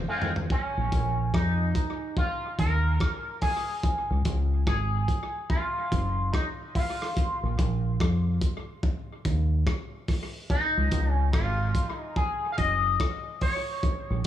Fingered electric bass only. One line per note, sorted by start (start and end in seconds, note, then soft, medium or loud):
0.77 0.91 A#1 medium
0.93 1.31 A#1 medium
1.34 1.72 F2 medium
2.59 2.97 D#2 medium
4.10 4.24 C#2 medium
4.26 4.64 C#2 medium
4.67 5.05 G#1 medium
5.92 6.30 F#1 medium
7.43 7.57 A#1 medium
7.59 7.97 A#1 medium
8.01 8.39 F2 medium
9.25 9.64 D#2 medium
10.77 10.91 C#2 loud
10.92 11.30 C#2 medium
11.34 11.72 G#1 medium
12.58 12.97 F#1 medium
14.10 14.24 A#1 medium